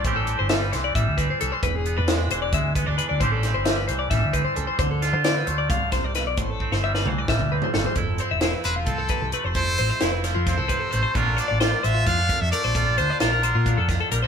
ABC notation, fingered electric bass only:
X:1
M:7/8
L:1/16
Q:1/4=132
K:Am
V:1 name="Fingered electric bass" clef=bass
A,,,3 G,,,3 C,,2 A,,, D,,2 z C,, z | E,,,3 E,,3 E,,,2 D,,3 D,, z D,, | A,,,3 G,,,3 C,,2 A,,, D,,2 z ^C,, z | D,,3 D,3 D,,2 C,,3 C,,2 B,,, |
A,,,3 G,,,3 C,,2 A,,, D,,2 z G,,, z | F,,,2 z E,,,2 z E,,,2 C,,2 z C,, z F,,,- | F,,,2 A,,, z F,,,3 F,,2 C,,2 z A,,, z | _B,,,2 z A,,,2 z A,,,2 F,,2 z F,, z B,,,- |
_B,,,2 D,, z B,,,3 _B,,2 F,,2 z B,,, z |]